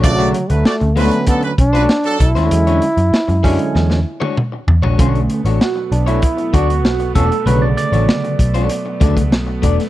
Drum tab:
HH |xxxx-xoxxxxx-xxx|xxxx-xox--------|xxxx--xxxxxx-xxx|x-xx-xxxx-xx--xx|
SD |----o-------o--o|----o---oo------|----o-------o---|----o-------o--o|
T1 |----------------|-----------o----|----------------|----------------|
T2 |----------------|------------o---|----------------|----------------|
FT |----------------|--------------oo|----------------|----------------|
BD |o-------o-o---o-|------o---------|o-------o-o---o-|------o---oo--o-|